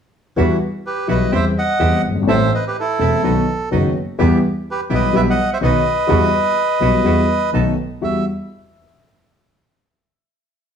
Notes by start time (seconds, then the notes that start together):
0.37 E2 E3 G3 B3 E4 F#4
0.86 G4 B4
1.08 B1 B2 E3 G3 B3 E4 F#4 B4 D#5
1.31 E2 E3 G3 C4 E4 G4 C5 E5
1.58 D#5 F#5
1.79 E2 E3 G3 C4 E4 G4
2.04 G1
2.10 F#1
2.15 G1
2.22 G#1
2.27 A1 A2 E3 A3 C4 E4 A4 C5 E5
2.54 B4 D#5
2.67 G4 B4
2.80 E4 A4
2.99 E1 E2 E3 A3 C4 E4 A4
3.23 B1 B2 D#3 F#3 B3 D#4 F#4
3.71 F#1 F#2 D#3 F#3 B3 D#4 F#4
4.18 E2 E3 G3 B3 E4 G4
4.71 G4 B4
4.89 B1 B2 E3 G3 B3 E4 G4
4.94 B4 D#5
5.13 B1 B2 E3 G3 B3 E4 G4 E5
5.17 B4
5.30 D#5 F#5
5.53 C5 E5
5.61 B1 B2 D#3 F#3 B3 D#4 F#4 D#5
5.65 B4
6.07 E2 E3 G3 B3 E4 F#4
6.80 B1 B2 E3 G3 B3 E4 F#4
7.04 E2 E3 G3 B3 E4 F#4
7.53 B1 B2 D#3 A3 B3 D#4 F#4 A4
8.01 E2 G3 E4 F#4 E5